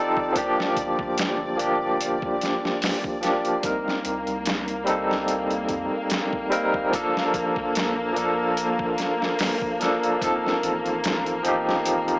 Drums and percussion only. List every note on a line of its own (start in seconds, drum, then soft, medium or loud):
0.17 kick medium
0.36 kick loud
0.36 closed hi-hat medium
0.60 snare medium
0.77 kick medium
0.77 closed hi-hat medium
0.99 kick medium
1.18 snare loud
1.18 closed hi-hat loud
1.59 closed hi-hat medium
2.01 closed hi-hat medium
2.22 kick loud
2.41 snare soft
2.41 closed hi-hat medium
2.65 snare soft
2.82 snare loud
2.82 open hi-hat medium
3.04 kick loud
3.23 snare soft
3.23 closed hi-hat medium
3.45 closed hi-hat soft
3.63 kick loud
3.63 closed hi-hat medium
3.88 snare soft
4.05 closed hi-hat medium
4.27 closed hi-hat soft
4.46 snare loud
4.46 closed hi-hat loud
4.68 closed hi-hat soft
4.87 closed hi-hat medium
5.11 snare soft
5.28 closed hi-hat medium
5.51 closed hi-hat soft
5.69 kick medium
5.69 closed hi-hat medium
6.10 snare loud
6.10 closed hi-hat medium
6.33 kick loud
6.52 closed hi-hat medium
6.74 kick medium
6.93 kick loud
6.93 closed hi-hat medium
7.17 snare medium
7.34 kick medium
7.34 closed hi-hat medium
7.56 kick loud
7.75 snare loud
7.75 closed hi-hat medium
8.16 closed hi-hat medium
8.57 closed hi-hat medium
8.79 kick loud
8.98 snare soft
8.98 closed hi-hat medium
9.22 snare soft
9.39 snare loud
9.39 open hi-hat medium
9.62 kick loud
9.81 snare soft
9.81 closed hi-hat medium
10.03 closed hi-hat soft
10.22 kick loud
10.22 closed hi-hat medium
10.46 snare soft
10.63 closed hi-hat medium
10.86 closed hi-hat soft
11.04 snare loud
11.04 closed hi-hat loud
11.26 closed hi-hat soft
11.45 closed hi-hat medium
11.69 snare soft
11.86 closed hi-hat medium
12.08 closed hi-hat soft